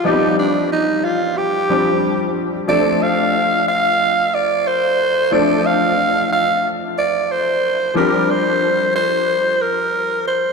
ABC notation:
X:1
M:4/4
L:1/8
Q:"Swing 16ths" 1/4=91
K:Dphr
V:1 name="Alto saxophone"
E D E F G3 z | d f2 f2 d c2 | d f2 f z d c2 | B c2 c2 B2 c |]
V:2 name="Grand piano"
[F,G,=B,CGd]4- [F,G,B,CGd] [F,G,CDG]3 | [F,A,CDA]8 | [F,A,CDA]8 | [F,G,CDG]8 |]